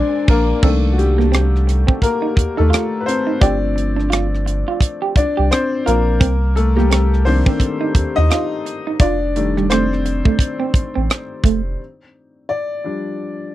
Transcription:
0.00 0.65 G#3 medium
0.00 0.65 C4 loud
0.00 0.60 D4 medium
0.00 0.64 D4 loud
0.00 0.60 A#4 medium
0.00 0.60 C5 medium
0.00 0.65 D5 loud
0.00 0.60 G#5 medium
0.28 0.53 A#1 loud
0.28 0.54 A#3 medium
0.28 0.54 A#4 medium
0.28 kick loud
0.28 crash medium
0.63 1.85 C2 loud
0.63 1.64 D#3 soft
0.63 0.91 A3 medium
0.63 1.64 A#3 soft
0.63 0.79 C4 medium
0.63 1.64 D4 medium
0.63 0.90 A4 medium
0.63 kick loud
0.63 crash medium
0.92 0.98 F#4 medium
0.98 1.99 G3 medium
0.98 2.06 G4 medium
0.98 muted clean electric guitar stroke soft
0.98 closed hi-hat medium
1.18 1.29 A#3 medium
1.18 cross-stick soft
1.32 1.48 C4 medium
1.32 cross-stick loud
1.32 closed hi-hat medium
1.56 cross-stick soft
1.67 muted clean electric guitar stroke soft
1.67 cross-stick soft
1.67 closed hi-hat medium
1.87 1.98 C4 medium
1.87 kick loud
2.02 2.55 A#3 medium
2.02 2.54 A#4 medium
2.02 kick medium
2.02 closed hi-hat medium
2.22 2.33 D#4 medium
2.36 2.46 D#2 soft
2.36 muted clean electric guitar stroke soft
2.36 kick medium
2.36 closed hi-hat medium
2.57 2.72 D#2 medium
2.57 2.99 A3 medium
2.57 2.68 D#4 medium
2.57 3.03 A4 medium
2.70 2.87 F4 medium
2.70 closed hi-hat medium
2.74 cross-stick loud
3.01 3.07 B4 medium
3.06 3.40 C4 medium
3.06 3.39 C5 medium
3.06 muted clean electric guitar stroke soft
3.06 closed hi-hat medium
3.27 3.38 D#4 medium
3.41 4.64 G1 loud
3.41 3.91 F3 soft
3.41 3.91 A3 soft
3.41 3.91 C4 medium
3.41 5.13 D4 medium
3.41 3.57 G4 medium
3.41 5.15 D5 medium
3.41 kick loud
3.41 closed hi-hat medium
3.76 muted clean electric guitar stroke soft
3.76 closed hi-hat medium
3.96 4.07 D4 medium
3.96 cross-stick soft
4.10 4.26 F4 medium
4.10 cross-stick loud
4.10 closed hi-hat medium
4.35 cross-stick soft
4.46 muted clean electric guitar stroke soft
4.46 closed hi-hat medium
4.68 4.78 F4 medium
4.80 kick medium
4.80 closed hi-hat medium
5.02 5.12 G4 medium
5.16 5.25 C2 soft
5.16 5.50 D4 medium
5.16 5.49 D5 medium
5.16 muted clean electric guitar stroke soft
5.16 kick medium
5.16 closed hi-hat medium
5.37 5.51 C2 medium
5.37 5.48 G4 medium
5.51 5.85 C4 medium
5.51 5.87 C5 medium
5.51 cross-stick loud
5.51 closed hi-hat medium
5.86 6.19 A#1 medium
5.86 6.53 A#3 medium
5.86 6.02 F4 medium
5.86 6.58 A#4 medium
5.86 closed hi-hat medium
6.20 7.43 C2 loud
6.20 6.36 C4 medium
6.20 kick loud
6.20 closed hi-hat medium
6.56 6.77 A3 medium
6.56 6.75 A4 medium
6.56 muted clean electric guitar stroke soft
6.56 closed hi-hat medium
6.76 7.23 G3 medium
6.76 6.87 A#3 medium
6.76 7.27 G4 medium
6.76 cross-stick soft
6.90 7.06 C4 medium
6.90 cross-stick loud
6.90 closed hi-hat medium
7.14 cross-stick soft
7.25 7.75 D#3 soft
7.25 7.75 A#3 soft
7.25 8.13 C4 medium
7.25 7.75 D4 medium
7.25 8.19 C5 medium
7.25 muted clean electric guitar stroke soft
7.25 cross-stick soft
7.25 open hi-hat soft
7.46 7.57 C4 medium
7.46 kick loud
7.60 kick medium
7.60 closed hi-hat medium
7.81 7.91 D#4 medium
7.95 8.04 D#2 soft
7.95 muted clean electric guitar stroke soft
7.95 kick medium
7.95 closed hi-hat medium
8.16 8.30 D#2 medium
8.16 8.27 D#4 medium
8.16 8.97 D#4 medium
8.16 9.02 D#5 loud
8.30 8.46 F4 medium
8.30 cross-stick loud
8.30 closed hi-hat medium
8.66 muted clean electric guitar stroke soft
8.66 closed hi-hat medium
8.87 8.97 D#4 medium
9.00 10.22 F1 loud
9.00 9.36 D4 medium
9.00 9.17 F4 medium
9.00 9.66 D5 loud
9.00 kick loud
9.00 closed hi-hat medium
9.36 10.36 D#3 soft
9.36 10.36 G3 soft
9.36 10.37 A3 soft
9.36 10.37 D4 medium
9.36 muted clean electric guitar stroke soft
9.36 closed hi-hat medium
9.57 9.67 G3 medium
9.57 cross-stick soft
9.70 9.86 A3 medium
9.70 11.41 C4 medium
9.70 11.40 C5 medium
9.70 cross-stick loud
9.70 closed hi-hat medium
9.93 cross-stick soft
10.06 muted clean electric guitar stroke soft
10.06 closed hi-hat medium
10.25 10.36 A3 medium
10.25 kick medium
10.39 kick medium
10.39 closed hi-hat medium
10.60 10.70 C4 medium
10.74 10.83 A1 soft
10.74 muted clean electric guitar stroke soft
10.74 kick medium
10.74 closed hi-hat medium
10.95 11.09 A1 medium
10.95 11.06 C4 medium
11.10 cross-stick loud
11.10 closed hi-hat medium
11.44 11.76 F1 medium
11.44 11.60 A3 medium
11.44 kick medium
11.44 closed hi-hat medium
12.49 13.55 D5 medium
12.84 13.55 F3 soft
12.84 13.55 G3 soft
12.84 13.55 D4 soft

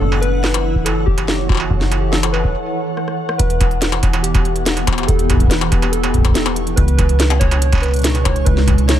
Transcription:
0.00 1.68 F#1 medium
0.00 3.38 E3 medium
0.00 1.37 B3 medium
0.00 2.55 E4 medium
0.00 0.22 A4 loud
0.00 2.55 F#5 medium
0.12 struck metal medium
0.20 0.87 B4 loud
0.20 4.75 C#5 medium
0.20 closed hi-hat soft
0.44 snare loud
0.44 struck metal medium
0.54 8.11 F#5 medium
0.54 closed hi-hat medium
0.54 struck metal medium
0.75 kick medium
0.85 1.07 A4 loud
0.85 closed hi-hat medium
0.85 struck metal medium
1.06 1.50 G4 medium
1.06 4.18 A4 medium
1.06 kick loud
1.18 closed hi-hat medium
1.18 struck metal medium
1.28 snare loud
1.48 1.98 F#4 medium
1.48 kick loud
1.48 struck metal soft
1.52 struck metal medium
1.55 struck metal medium
1.57 struck metal medium
1.60 struck metal medium
1.70 2.55 F#1 medium
1.70 kick medium
1.81 snare medium
1.92 closed hi-hat medium
1.92 struck metal medium
2.01 2.11 G4 medium
2.11 2.34 A4 loud
2.11 snare loud
2.23 closed hi-hat medium
2.23 struck metal loud
2.32 2.53 B4 loud
2.32 struck metal medium
2.44 kick medium
2.97 cross-stick medium
3.08 cross-stick medium
3.29 cross-stick medium
3.38 5.06 E1 medium
3.38 6.77 E3 medium
3.38 9.00 D4 medium
3.38 3.98 B4 medium
3.38 9.00 C#6 medium
3.38 kick loud
3.38 closed hi-hat loud
3.50 closed hi-hat soft
3.61 kick loud
3.61 closed hi-hat medium
3.61 struck metal medium
3.69 7.31 B3 loud
3.69 closed hi-hat soft
3.82 snare loud
3.82 closed hi-hat loud
3.92 closed hi-hat soft
3.92 struck metal medium
4.00 7.35 G4 medium
4.00 kick loud
4.00 closed hi-hat medium
4.00 struck metal medium
4.13 closed hi-hat soft
4.13 struck metal medium
4.23 4.83 G4 medium
4.23 closed hi-hat loud
4.34 kick loud
4.34 closed hi-hat soft
4.34 struck metal medium
4.45 closed hi-hat soft
4.56 closed hi-hat soft
4.66 snare loud
4.66 closed hi-hat medium
4.77 closed hi-hat soft
4.77 struck metal soft
4.87 kick medium
4.87 closed hi-hat medium
4.87 struck metal medium
4.87 struck metal soft
4.93 struck metal medium
4.98 closed hi-hat soft
4.98 struck metal medium
5.03 5.51 A4 medium
5.03 struck metal soft
5.08 6.75 E1 medium
5.08 kick loud
5.08 closed hi-hat loud
5.19 closed hi-hat soft
5.30 kick soft
5.30 closed hi-hat medium
5.30 struck metal medium
5.33 kick medium
5.37 kick medium
5.37 closed hi-hat soft
5.40 kick medium
5.44 kick medium
5.47 5.94 B4 medium
5.47 kick loud
5.47 snare loud
5.47 closed hi-hat loud
5.61 closed hi-hat soft
5.61 struck metal medium
5.72 kick loud
5.72 closed hi-hat medium
5.72 struck metal medium
5.82 closed hi-hat soft
5.82 struck metal medium
5.92 6.32 A4 loud
5.92 closed hi-hat loud
6.03 closed hi-hat soft
6.03 struck metal medium
6.14 kick medium
6.14 closed hi-hat soft
6.18 kick medium
6.21 kick medium
6.21 closed hi-hat soft
6.21 struck metal medium
6.25 kick medium
6.28 kick loud
6.32 6.78 A4 loud
6.32 kick loud
6.32 snare loud
6.32 closed hi-hat medium
6.46 closed hi-hat soft
6.46 struck metal medium
6.46 struck metal soft
6.56 closed hi-hat medium
6.67 closed hi-hat soft
6.76 8.44 C#2 medium
6.76 9.00 B2 medium
6.76 6.96 B4 loud
6.76 kick loud
6.76 closed hi-hat loud
6.88 closed hi-hat soft
6.97 7.41 B4 loud
6.97 kick loud
6.97 closed hi-hat medium
6.97 struck metal medium
7.09 9.00 G#3 medium
7.09 closed hi-hat soft
7.20 snare loud
7.20 closed hi-hat loud
7.25 9.00 C#5 medium
7.30 closed hi-hat soft
7.30 struck metal medium
7.39 7.84 C#5 loud
7.39 kick loud
7.39 closed hi-hat medium
7.39 struck metal medium
7.51 closed hi-hat soft
7.51 struck metal medium
7.62 closed hi-hat loud
7.70 9.00 E4 medium
7.70 kick loud
7.70 closed hi-hat soft
7.70 struck metal medium
7.75 struck metal medium
7.78 struck metal soft
7.80 8.26 B4 loud
7.80 closed hi-hat soft
7.80 struck metal soft
7.83 struck metal soft
7.86 struck metal soft
7.88 struck metal soft
7.91 closed hi-hat soft
7.91 struck metal soft
7.96 closed hi-hat soft
7.99 closed hi-hat soft
8.02 snare loud
8.02 closed hi-hat soft
8.04 closed hi-hat medium
8.07 closed hi-hat soft
8.09 closed hi-hat soft
8.12 closed hi-hat soft
8.15 closed hi-hat soft
8.15 struck metal soft
8.24 8.46 C#5 loud
8.24 kick medium
8.24 closed hi-hat medium
8.24 struck metal medium
8.24 struck metal soft
8.36 closed hi-hat soft
8.45 9.00 C#2 medium
8.45 8.89 B4 loud
8.45 kick loud
8.45 closed hi-hat medium
8.57 snare medium
8.68 kick loud
8.68 closed hi-hat medium
8.68 struck metal medium
8.71 kick medium
8.75 kick medium
8.75 closed hi-hat soft
8.87 9.00 C#5 loud
8.87 snare loud
8.87 closed hi-hat medium

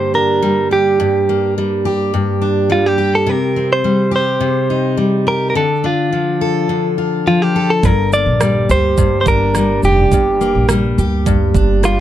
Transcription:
0.00 0.98 G2 medium
0.00 1.07 D3 medium
0.00 0.42 G3 medium
0.00 1.28 A#3 medium
0.00 0.71 G4 medium
0.00 0.15 C5 medium
0.14 2.40 D4 soft
0.14 0.68 A#4 medium
0.42 1.57 G3 medium
0.71 1.85 G4 medium
0.71 1.53 G4 medium
1.00 2.12 G2 medium
1.29 3.34 A#3 medium
1.58 2.69 G3 medium
1.85 2.98 G4 medium
2.14 3.33 G2 medium
2.41 3.33 D4 medium
2.70 3.84 G3 medium
2.70 2.86 F4 medium
2.86 3.15 G4 medium
2.98 4.11 G4 medium
3.15 3.29 A4 medium
3.27 4.39 C3 medium
3.27 3.72 A#4 medium
3.56 5.62 C4 soft
3.73 4.11 C5 medium
3.84 4.96 G3 medium
4.11 5.26 G4 medium
4.16 4.96 C5 medium
4.40 5.55 C3 medium
4.70 5.61 D#4 medium
4.97 5.61 G3 medium
5.27 5.61 G4 medium
5.27 5.48 A#4 medium
5.50 5.56 A#4 medium
5.55 6.69 D3 medium
5.55 5.86 A4 medium
5.84 8.12 D4 soft
5.84 6.95 F4 medium
6.13 7.26 F3 medium
6.41 7.54 A4 medium
6.69 10.19 D3 medium
6.98 7.89 F4 medium
7.27 7.90 F3 medium
7.27 7.42 F4 medium
7.42 7.71 G4 medium
7.56 7.90 A4 medium
7.70 7.85 A4 medium
7.83 8.23 G1 medium
7.83 8.96 G2 medium
7.83 8.13 A#4 medium
7.83 kick medium
7.83 shaker medium
8.12 10.40 A#3 medium
8.12 8.71 D5 medium
8.12 shaker soft
8.26 8.66 A#1 medium
8.41 9.55 G3 medium
8.41 cross-stick loud
8.41 shaker medium
8.69 9.22 D2 medium
8.69 9.84 G4 medium
8.69 9.20 C5 medium
8.69 shaker soft
8.98 10.12 G2 medium
8.98 kick medium
8.98 shaker medium
9.21 9.27 C5 medium
9.26 9.79 G1 medium
9.26 11.54 D4 soft
9.26 9.80 A#4 medium
9.26 kick medium
9.26 shaker soft
9.55 10.69 G3 medium
9.55 cross-stick medium
9.55 shaker medium
9.83 10.10 F1 medium
9.83 10.98 G4 medium
9.83 10.66 G4 medium
9.83 shaker soft
10.11 10.51 G1 medium
10.11 11.25 G2 medium
10.11 kick medium
10.11 shaker medium
10.41 12.00 A#3 soft
10.41 shaker soft
10.55 10.94 A#1 medium
10.69 11.83 G3 medium
10.69 cross-stick loud
10.69 shaker medium
10.98 11.51 D2 medium
10.98 12.00 G4 medium
10.98 shaker soft
11.26 12.00 G2 medium
11.26 kick medium
11.26 shaker medium
11.55 12.00 G1 medium
11.55 12.00 D4 soft
11.55 kick medium
11.55 shaker soft
11.83 12.00 G3 medium
11.83 11.99 F4 medium
11.83 cross-stick medium
11.83 shaker medium

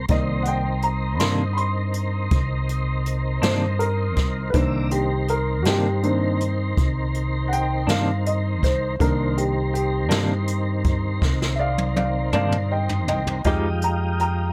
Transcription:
0.08 1.20 C2 medium
0.08 0.59 D#3 soft
0.08 0.59 A#3 soft
0.08 4.51 C4 medium
0.08 4.51 D#4 medium
0.08 4.51 A#4 medium
0.08 4.51 C5 medium
0.08 0.59 D5 soft
0.08 0.46 D#5 medium
0.08 kick medium
0.08 closed hi-hat medium
0.43 0.47 F#5 soft
0.43 closed hi-hat medium
0.48 0.83 G5 medium
0.82 1.19 A#5 medium
0.82 closed hi-hat medium
1.15 1.20 B5 soft
1.20 2.27 G2 medium
1.20 1.44 C3 medium
1.20 1.44 D#3 medium
1.20 1.43 A#3 medium
1.20 1.42 D4 medium
1.20 1.56 C6 medium
1.20 snare medium
1.20 closed hi-hat medium
1.53 1.58 B5 soft
1.53 3.02 C6 medium
1.57 closed hi-hat soft
1.94 closed hi-hat medium
2.31 3.39 C2 medium
2.31 kick loud
2.31 closed hi-hat medium
2.69 closed hi-hat medium
3.06 closed hi-hat medium
3.42 4.16 G2 medium
3.42 3.66 C3 soft
3.42 3.65 D#3 medium
3.42 3.65 A#3 medium
3.42 3.65 D4 medium
3.42 3.79 C5 medium
3.42 snare medium
3.42 closed hi-hat medium
3.79 4.52 A#4 medium
3.79 closed hi-hat medium
4.16 4.51 C2 medium
4.16 kick medium
4.16 snare soft
4.16 closed hi-hat medium
4.50 5.65 C2 medium
4.50 5.03 D#3 soft
4.50 5.03 A#3 soft
4.50 4.55 B4 medium
4.50 kick medium
4.50 closed hi-hat medium
4.54 4.90 C4 medium
4.54 5.04 D4 soft
4.54 4.90 A#4 medium
4.54 4.91 C5 medium
4.54 4.92 D5 medium
4.54 4.92 E5 medium
4.91 8.95 D#3 medium
4.91 8.96 C4 medium
4.91 5.28 G4 medium
4.91 8.96 A#4 medium
4.91 8.96 C5 medium
4.91 closed hi-hat medium
5.28 5.65 A#4 medium
5.28 closed hi-hat medium
5.63 6.73 G2 medium
5.63 5.88 A#3 medium
5.63 5.88 D4 medium
5.63 5.67 F#4 soft
5.63 snare loud
5.63 closed hi-hat medium
5.67 5.89 C3 soft
5.67 5.89 D#3 medium
5.67 6.02 G4 medium
6.03 6.36 D#3 soft
6.03 6.36 A#3 soft
6.03 6.75 C4 medium
6.03 6.37 D4 soft
6.03 closed hi-hat medium
6.41 closed hi-hat medium
6.77 7.85 C2 medium
6.77 kick medium
6.77 closed hi-hat medium
7.14 closed hi-hat soft
7.48 7.52 F#5 medium
7.53 7.88 G5 medium
7.53 closed hi-hat medium
7.87 8.62 G2 medium
7.87 8.11 C3 medium
7.87 8.11 D#3 medium
7.87 8.11 A#3 medium
7.87 8.10 D4 medium
7.87 8.25 F5 medium
7.87 snare medium
7.87 closed hi-hat medium
8.26 8.62 D#5 medium
8.26 closed hi-hat medium
8.62 8.97 C2 medium
8.62 9.00 C5 medium
8.62 kick medium
8.62 snare soft
8.62 closed hi-hat medium
8.99 10.11 C2 medium
8.99 9.49 D#3 soft
8.99 13.42 D#3 medium
8.99 9.49 A#3 soft
8.99 13.42 C4 medium
8.99 9.50 D4 soft
8.99 13.42 A#4 medium
8.99 9.37 A#4 medium
8.99 13.42 C5 medium
8.99 kick medium
8.99 closed hi-hat medium
9.38 9.72 G4 medium
9.38 closed hi-hat medium
9.74 11.19 G4 medium
9.74 closed hi-hat medium
10.09 11.18 G2 medium
10.09 10.33 C3 medium
10.09 10.33 D#3 medium
10.09 10.33 A#3 medium
10.09 10.32 D4 medium
10.09 snare loud
10.09 closed hi-hat medium
10.48 closed hi-hat medium
10.84 kick medium
10.84 closed hi-hat medium
11.22 12.30 C2 medium
11.22 kick loud
11.22 snare medium
11.42 snare soft
11.56 11.94 D5 medium
11.56 11.60 E5 soft
11.60 11.95 F5 medium
11.78 high tom medium
11.96 12.31 D5 medium
11.96 12.33 F5 medium
11.96 high tom medium
12.33 13.08 G2 medium
12.33 12.57 C3 soft
12.33 12.57 D#3 medium
12.33 12.56 A#3 medium
12.33 12.56 D4 medium
12.33 12.69 D5 medium
12.33 12.71 F5 medium
12.33 mid tom medium
12.52 mid tom medium
12.71 13.06 D#5 medium
12.71 13.07 G5 medium
12.89 floor tom medium
13.08 13.42 C2 medium
13.08 13.43 D#5 medium
13.08 13.45 G5 medium
13.08 floor tom medium
13.27 floor tom medium
13.44 14.53 F2 medium
13.44 13.68 F3 medium
13.44 14.53 F3 medium
13.44 14.53 G3 soft
13.44 13.68 G#3 medium
13.44 14.53 G#3 soft
13.44 14.53 D#4 soft
13.44 13.69 D#4 medium
13.44 14.53 F4 medium
13.44 14.53 G4 medium
13.44 13.69 G4 medium
13.44 14.53 D#5 medium
13.44 13.80 D#5 medium
13.44 13.82 G5 medium
13.44 kick loud
13.44 closed hi-hat medium
13.82 14.18 G5 medium
13.82 14.19 A#5 medium
13.82 closed hi-hat medium
14.19 14.53 G5 medium
14.19 14.53 A#5 medium
14.19 closed hi-hat medium

